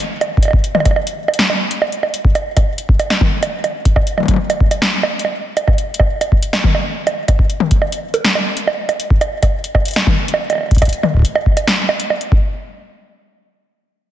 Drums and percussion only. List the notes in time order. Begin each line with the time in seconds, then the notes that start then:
0.21 closed hi-hat, high bongo
0.37 kick
0.43 closed hi-hat, high bongo
0.45 high bongo
0.48 high bongo
0.51 kick, high bongo
0.64 closed hi-hat
0.75 high tom, high bongo
0.80 high bongo
0.85 kick, closed hi-hat, high bongo
0.91 high bongo
0.96 high bongo
1.07 closed hi-hat
1.28 high bongo
1.34 closed hi-hat
1.39 snare
1.50 high bongo
1.71 closed hi-hat
1.82 high bongo
1.92 closed hi-hat
2.03 high bongo
2.14 closed hi-hat
2.25 kick
2.35 closed hi-hat, high bongo
2.57 kick, closed hi-hat, high bongo
2.78 closed hi-hat
2.89 kick
2.99 closed hi-hat, high bongo
3.10 snare, high bongo
3.21 kick, high tom
3.43 closed hi-hat, high bongo
3.64 closed hi-hat, high bongo
3.85 kick, closed hi-hat
3.96 kick, high bongo
4.07 closed hi-hat
4.18 high tom, high bongo
4.20 high tom
4.23 high tom
4.26 kick, closed hi-hat, high tom
4.28 high tom
4.31 high tom
4.34 high tom
4.36 high tom
4.50 closed hi-hat, high bongo
4.60 kick
4.71 closed hi-hat, high bongo
4.82 snare
5.03 high bongo
5.19 closed hi-hat
5.25 high bongo
5.57 closed hi-hat, high bongo
5.67 kick, high bongo
5.78 closed hi-hat
5.94 closed hi-hat
6.00 kick, high bongo
6.21 closed hi-hat, high bongo
6.32 kick
6.42 closed hi-hat
6.53 snare, high bongo
6.64 kick, high tom
6.75 high bongo
7.07 closed hi-hat, high bongo
7.28 kick, closed hi-hat, high bongo
7.39 kick
7.50 closed hi-hat
7.60 high tom
7.71 kick, closed hi-hat
7.82 high bongo
7.92 closed hi-hat
8.14 closed hi-hat, high bongo
8.25 snare
8.35 high bongo
8.57 closed hi-hat
8.67 high bongo
8.89 closed hi-hat, high bongo
9.00 closed hi-hat
9.10 kick
9.21 closed hi-hat, high bongo
9.43 kick, closed hi-hat, high bongo
9.64 closed hi-hat
9.75 kick, high bongo
9.85 closed hi-hat
9.88 closed hi-hat
9.91 closed hi-hat
9.94 snare, closed hi-hat, high bongo
10.07 kick, high tom
10.28 closed hi-hat
10.34 high bongo
10.50 closed hi-hat, high bongo
10.53 high bongo
10.55 high bongo
10.58 high bongo
10.61 high bongo
10.63 high bongo
10.66 high bongo
10.69 kick, closed hi-hat, high bongo
10.75 kick, closed hi-hat
10.78 closed hi-hat
10.82 kick, closed hi-hat, high bongo
10.85 kick, closed hi-hat
10.89 closed hi-hat
10.93 closed hi-hat
11.03 high tom, high bongo
11.14 kick
11.17 kick
11.19 kick
11.22 kick, closed hi-hat
11.35 high bongo
11.46 kick
11.57 closed hi-hat, high bongo
11.67 snare
11.89 high bongo
12.00 closed hi-hat
12.10 high bongo
12.21 closed hi-hat
12.32 kick